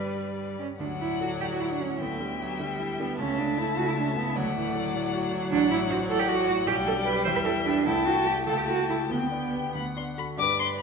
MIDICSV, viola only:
0, 0, Header, 1, 2, 480
1, 0, Start_track
1, 0, Tempo, 424328
1, 905, Time_signature, 6, 3, 24, 8
1, 905, Tempo, 400000
1, 3305, Tempo, 388601
1, 9065, Tempo, 407332
1, 10505, Tempo, 421941
1, 12936, End_track
2, 0, Start_track
2, 0, Title_t, "Viola"
2, 0, Program_c, 0, 41
2, 0, Note_on_c, 0, 55, 71
2, 645, Note_off_c, 0, 55, 0
2, 904, Note_on_c, 0, 54, 66
2, 2302, Note_off_c, 0, 54, 0
2, 2344, Note_on_c, 0, 57, 65
2, 2589, Note_on_c, 0, 55, 53
2, 2607, Note_off_c, 0, 57, 0
2, 2819, Note_off_c, 0, 55, 0
2, 2826, Note_on_c, 0, 54, 61
2, 3066, Note_on_c, 0, 55, 66
2, 3084, Note_off_c, 0, 54, 0
2, 3781, Note_off_c, 0, 55, 0
2, 3788, Note_on_c, 0, 57, 71
2, 5205, Note_off_c, 0, 57, 0
2, 5230, Note_on_c, 0, 54, 68
2, 5460, Note_off_c, 0, 54, 0
2, 5468, Note_on_c, 0, 52, 63
2, 5700, Note_on_c, 0, 54, 81
2, 5719, Note_off_c, 0, 52, 0
2, 8079, Note_off_c, 0, 54, 0
2, 8087, Note_on_c, 0, 55, 95
2, 9508, Note_off_c, 0, 55, 0
2, 9530, Note_on_c, 0, 57, 87
2, 10952, Note_off_c, 0, 57, 0
2, 10983, Note_on_c, 0, 59, 60
2, 12062, Note_off_c, 0, 59, 0
2, 12439, Note_on_c, 0, 71, 55
2, 12936, Note_off_c, 0, 71, 0
2, 12936, End_track
0, 0, End_of_file